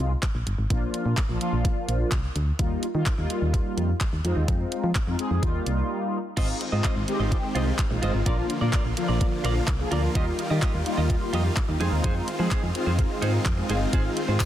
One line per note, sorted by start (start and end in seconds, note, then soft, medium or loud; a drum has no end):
0.00 0.16 C2 medium
0.00 0.12 G#3 medium
0.00 0.12 C4 medium
0.00 0.12 D#4 medium
0.00 0.12 F4 medium
0.00 closed hi-hat soft
0.23 kick loud
0.23 clap loud
0.23 closed hi-hat medium
0.35 0.43 A#1 medium
0.47 0.55 G1 medium
0.47 closed hi-hat medium
0.58 0.67 G#1 medium
0.70 0.87 A#1 loud
0.70 1.15 F3 medium
0.70 1.15 A#3 medium
0.70 1.15 D4 medium
0.70 1.15 F4 loud
0.70 kick loud
0.70 closed hi-hat medium
0.94 closed hi-hat medium
1.06 1.14 A#2 medium
1.17 kick loud
1.17 clap loud
1.17 closed hi-hat medium
1.29 1.37 A#1 medium
1.29 1.38 F3 medium
1.29 1.38 A#3 medium
1.29 1.38 D4 medium
1.29 1.38 F4 medium
1.41 2.13 F3 medium
1.41 2.13 A#3 medium
1.41 2.13 D4 medium
1.41 2.13 F4 medium
1.41 closed hi-hat medium
1.53 1.69 A#1 medium
1.65 kick loud
1.65 closed hi-hat medium
1.88 2.05 A#1 medium
1.88 closed hi-hat medium
2.12 2.28 C2 medium
2.12 kick loud
2.12 clap loud
2.12 closed hi-hat medium
2.36 2.52 D2 loud
2.36 closed hi-hat medium
2.59 2.76 D#2 loud
2.59 2.86 G3 medium
2.59 2.86 A#3 medium
2.59 2.86 D#4 medium
2.59 2.86 F4 loud
2.59 kick loud
2.59 closed hi-hat medium
2.83 closed hi-hat medium
2.94 3.03 D#3 medium
2.94 3.12 G3 medium
2.94 3.12 A#3 medium
2.94 3.13 D#4 medium
2.94 3.13 F4 medium
3.06 kick loud
3.06 clap loud
3.06 closed hi-hat medium
3.18 3.26 D#2 loud
3.18 3.90 G3 medium
3.18 3.90 A#3 medium
3.18 3.90 D#4 medium
3.18 3.90 F4 medium
3.30 closed hi-hat medium
3.42 3.58 D#2 medium
3.54 kick loud
3.54 closed hi-hat medium
3.77 3.94 F2 medium
3.77 closed hi-hat soft
4.01 kick loud
4.01 clap loud
4.01 closed hi-hat medium
4.13 4.21 D#2 medium
4.24 4.33 F2 loud
4.24 4.91 G#3 medium
4.24 4.91 C4 medium
4.24 4.91 D#4 medium
4.24 4.91 F4 medium
4.24 closed hi-hat medium
4.37 4.45 D#2 loud
4.48 4.64 F2 loud
4.48 kick loud
4.48 closed hi-hat medium
4.72 closed hi-hat medium
4.84 4.92 F3 medium
4.95 kick loud
4.95 clap loud
4.95 closed hi-hat medium
5.07 5.15 F2 medium
5.07 5.16 G#3 medium
5.07 5.16 C4 medium
5.07 5.16 D#4 medium
5.07 5.16 F4 loud
5.19 5.43 G#3 medium
5.19 5.43 C4 medium
5.19 5.42 D#4 medium
5.19 5.43 G#4 medium
5.19 closed hi-hat medium
5.31 5.39 F2 medium
5.42 5.59 D#2 loud
5.42 6.18 G3 medium
5.42 6.18 A#3 medium
5.42 6.18 D#4 medium
5.42 6.18 F4 loud
5.42 kick loud
5.42 closed hi-hat medium
5.66 5.83 C2 medium
5.66 closed hi-hat soft
6.37 6.53 G#1 loud
6.37 8.24 D#3 medium
6.37 6.64 G#3 medium
6.37 8.24 G#3 medium
6.37 6.64 C4 medium
6.37 8.24 C4 medium
6.37 6.64 D#4 medium
6.37 6.56 F4 medium
6.37 14.45 F4 medium
6.37 6.64 F4 medium
6.37 6.49 C5 medium
6.37 6.48 D#5 medium
6.37 kick loud
6.37 closed hi-hat medium
6.37 crash loud
6.49 muted clean electric guitar stroke soft
6.61 muted clean electric guitar stroke soft
6.61 closed hi-hat medium
6.72 6.81 G#2 loud
6.72 6.99 G#3 medium
6.72 6.99 C4 medium
6.72 6.99 D#4 medium
6.72 7.00 F4 medium
6.72 6.83 F4 soft
6.72 6.84 C5 medium
6.72 6.85 D#5 medium
6.84 7.03 F4 medium
6.84 6.96 C5 medium
6.84 6.95 D#5 loud
6.84 kick loud
6.84 clap loud
6.84 closed hi-hat medium
6.96 7.04 G#1 loud
6.96 muted clean electric guitar stroke medium
7.08 7.71 G#3 medium
7.08 7.71 C4 medium
7.08 7.71 D#4 medium
7.08 7.71 G4 loud
7.08 muted clean electric guitar stroke soft
7.08 closed hi-hat medium
7.19 7.36 G#1 medium
7.19 7.37 F4 medium
7.19 7.37 C5 medium
7.19 7.36 D#5 medium
7.32 kick loud
7.32 closed hi-hat medium
7.43 muted clean electric guitar stroke soft
7.55 7.71 C2 medium
7.55 7.74 F4 medium
7.55 7.67 C5 medium
7.55 7.66 D#5 loud
7.55 closed hi-hat soft
7.67 muted clean electric guitar stroke medium
7.79 kick loud
7.79 clap loud
7.79 closed hi-hat medium
7.90 7.99 A#1 medium
7.90 8.00 G#3 medium
7.90 8.00 C4 medium
7.90 8.00 D#4 medium
7.90 8.00 F4 loud
7.90 muted clean electric guitar stroke soft
8.02 8.11 G1 medium
8.02 8.20 G#3 medium
8.02 8.20 C4 medium
8.02 8.21 D#4 medium
8.02 8.21 F4 medium
8.02 8.14 C5 medium
8.02 8.13 D#5 medium
8.02 closed hi-hat medium
8.14 8.23 G#1 medium
8.14 muted clean electric guitar stroke soft
8.26 8.42 A#1 loud
8.26 10.13 D3 medium
8.26 8.53 F3 medium
8.26 10.13 F3 medium
8.26 8.53 A#3 medium
8.26 11.77 A#3 medium
8.26 8.53 D4 medium
8.26 8.45 F4 medium
8.26 8.53 F4 medium
8.26 8.38 A#4 medium
8.26 8.37 D5 medium
8.26 kick loud
8.26 closed hi-hat medium
8.38 muted clean electric guitar stroke soft
8.50 muted clean electric guitar stroke soft
8.50 closed hi-hat medium
8.61 8.70 A#2 medium
8.61 8.88 F3 medium
8.61 8.88 A#3 medium
8.61 8.89 D4 medium
8.61 8.89 F4 medium
8.61 8.72 F4 medium
8.61 8.73 A#4 medium
8.61 8.73 D5 medium
8.73 8.92 F4 medium
8.73 8.85 A#4 medium
8.73 8.84 D5 medium
8.73 kick loud
8.73 clap loud
8.73 closed hi-hat medium
8.85 8.93 A#1 medium
8.85 muted clean electric guitar stroke medium
8.97 9.60 F3 medium
8.97 9.60 A#3 medium
8.97 9.60 D4 medium
8.97 9.60 F4 loud
8.97 muted clean electric guitar stroke soft
8.97 closed hi-hat medium
9.08 9.25 A#1 medium
9.08 9.26 F4 medium
9.08 9.26 A#4 medium
9.08 9.25 D5 medium
9.21 kick loud
9.21 closed hi-hat medium
9.32 muted clean electric guitar stroke soft
9.44 9.61 A#1 medium
9.44 9.63 F4 medium
9.44 9.56 A#4 medium
9.44 9.55 D5 medium
9.44 closed hi-hat soft
9.56 muted clean electric guitar stroke soft
9.68 9.84 C2 medium
9.68 kick loud
9.68 clap loud
9.68 closed hi-hat medium
9.79 9.89 F3 medium
9.79 9.89 A#3 medium
9.79 9.89 D4 medium
9.79 9.89 G#4 medium
9.79 muted clean electric guitar stroke medium
9.91 10.08 D2 loud
9.91 10.09 F3 medium
9.91 10.09 A#3 medium
9.91 10.09 D4 medium
9.91 10.10 F4 medium
9.91 10.03 A#4 medium
9.91 10.02 D5 medium
9.91 closed hi-hat medium
10.03 muted clean electric guitar stroke medium
10.15 10.31 D#2 loud
10.15 11.79 D#3 medium
10.15 10.42 G3 medium
10.15 11.79 G3 medium
10.15 10.42 A#3 medium
10.15 10.42 D#4 medium
10.15 10.34 F4 medium
10.15 10.42 F4 loud
10.15 10.27 G4 medium
10.15 10.26 D#5 medium
10.15 kick loud
10.15 closed hi-hat medium
10.27 muted clean electric guitar stroke soft
10.38 muted clean electric guitar stroke soft
10.38 closed hi-hat medium
10.50 10.59 D#3 loud
10.50 10.77 G3 medium
10.50 10.77 A#3 medium
10.50 10.78 D#4 medium
10.50 10.78 F4 medium
10.50 10.61 F4 medium
10.50 10.62 G4 medium
10.50 10.63 D#5 medium
10.62 10.81 F4 medium
10.62 10.74 G4 medium
10.62 10.73 D#5 medium
10.62 kick loud
10.62 clap loud
10.62 closed hi-hat medium
10.74 10.82 D#2 loud
10.74 muted clean electric guitar stroke soft
10.86 11.49 G3 medium
10.86 11.49 A#3 medium
10.86 11.49 D#4 medium
10.86 11.49 F4 loud
10.86 muted clean electric guitar stroke soft
10.86 closed hi-hat medium
10.97 11.14 D#2 medium
10.97 11.15 F4 medium
10.97 11.15 G4 medium
10.97 11.14 D#5 medium
11.10 kick loud
11.10 closed hi-hat medium
11.21 muted clean electric guitar stroke soft
11.33 11.50 F2 medium
11.33 11.52 F4 medium
11.33 11.45 G4 medium
11.33 11.44 D#5 loud
11.33 closed hi-hat medium
11.45 muted clean electric guitar stroke soft
11.57 kick loud
11.57 clap loud
11.57 closed hi-hat medium
11.68 11.77 D#2 medium
11.68 11.78 G3 medium
11.68 11.78 A#3 medium
11.68 11.78 D#4 medium
11.68 11.78 G4 medium
11.68 muted clean electric guitar stroke medium
11.80 11.89 F2 loud
11.80 14.45 D#3 medium
11.80 12.28 G#3 medium
11.80 14.45 G#3 medium
11.80 12.28 C4 medium
11.80 14.45 C4 medium
11.80 11.99 D#4 medium
11.80 12.28 D#4 medium
11.80 12.28 F4 loud
11.80 11.92 G#4 medium
11.80 11.91 C5 medium
11.80 closed hi-hat medium
11.92 12.00 D#2 medium
11.92 muted clean electric guitar stroke soft
12.04 12.20 F2 loud
12.04 12.23 D#4 medium
12.04 12.15 G#4 medium
12.04 12.14 C5 medium
12.04 kick loud
12.04 closed hi-hat medium
12.15 muted clean electric guitar stroke soft
12.27 muted clean electric guitar stroke soft
12.27 closed hi-hat medium
12.39 12.48 F3 medium
12.39 12.66 G#3 medium
12.39 12.66 C4 medium
12.39 12.67 D#4 medium
12.39 12.50 D#4 medium
12.39 12.67 G#4 loud
12.39 12.51 G#4 medium
12.39 12.51 C5 medium
12.51 12.70 D#4 medium
12.51 12.63 G#4 medium
12.51 12.62 C5 medium
12.51 kick loud
12.51 clap loud
12.51 closed hi-hat medium
12.63 12.71 F2 loud
12.63 muted clean electric guitar stroke soft
12.75 13.38 G#3 medium
12.75 13.38 C4 medium
12.75 13.38 D#4 medium
12.75 13.38 F4 loud
12.75 muted clean electric guitar stroke soft
12.75 closed hi-hat medium
12.86 13.03 F2 loud
12.86 13.04 D#4 medium
12.86 13.04 G#4 medium
12.86 13.03 C5 medium
12.99 kick loud
12.99 closed hi-hat medium
13.10 muted clean electric guitar stroke soft
13.22 13.39 G#2 medium
13.22 13.41 D#4 medium
13.22 13.34 G#4 medium
13.22 13.33 C5 medium
13.22 closed hi-hat medium
13.34 muted clean electric guitar stroke soft
13.46 13.62 F2 medium
13.46 kick loud
13.46 clap loud
13.46 closed hi-hat medium
13.57 13.66 G#3 medium
13.57 13.67 C4 medium
13.57 13.67 D#4 medium
13.57 13.67 F4 medium
13.57 muted clean electric guitar stroke soft
13.69 13.86 G1 medium
13.69 13.87 G#3 medium
13.69 13.87 C4 medium
13.69 13.88 D#4 medium
13.69 13.87 D#4 medium
13.69 13.88 F4 loud
13.69 13.81 G#4 medium
13.69 13.80 C5 medium
13.69 closed hi-hat medium
13.81 muted clean electric guitar stroke soft
13.93 14.09 G#1 loud
13.93 14.20 G#3 medium
13.93 14.20 C4 medium
13.93 14.20 D#4 medium
13.93 14.12 F4 medium
13.93 14.20 F4 medium
13.93 14.05 G#4 medium
13.93 14.04 C5 medium
13.93 kick loud
13.93 closed hi-hat medium
14.05 muted clean electric guitar stroke soft
14.17 muted clean electric guitar stroke soft
14.17 closed hi-hat medium
14.28 14.37 G#2 medium
14.28 14.45 G#3 medium
14.28 14.45 C4 medium
14.28 14.45 D#4 medium
14.28 14.45 F4 loud
14.28 14.39 F4 medium
14.28 14.40 G#4 medium
14.28 14.40 C5 medium
14.40 14.45 F4 medium
14.40 14.45 G#4 medium
14.40 14.45 C5 loud
14.40 kick loud
14.40 clap loud
14.40 closed hi-hat medium
14.40 tambourine medium